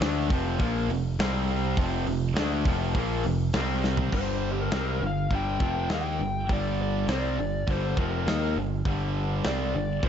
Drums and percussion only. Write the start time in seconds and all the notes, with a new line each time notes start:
0.01 snare, open hi-hat
0.30 kick, open hi-hat
0.60 kick, open hi-hat
0.90 open hi-hat
1.19 snare, open hi-hat
1.48 open hi-hat
1.77 kick, open hi-hat
2.07 open hi-hat
2.36 snare, open hi-hat
2.65 kick, open hi-hat
2.95 kick, open hi-hat
3.23 open hi-hat
3.53 snare, open hi-hat
3.84 snare
3.97 floor tom
4.12 kick, crash
4.71 snare, open hi-hat
5.31 kick, open hi-hat
5.60 kick
5.89 snare, open hi-hat
6.49 kick, open hi-hat
7.08 snare, open hi-hat
7.68 kick, open hi-hat
7.97 kick
8.27 snare, open hi-hat
8.85 kick, open hi-hat
9.44 snare, open hi-hat
10.03 kick, open hi-hat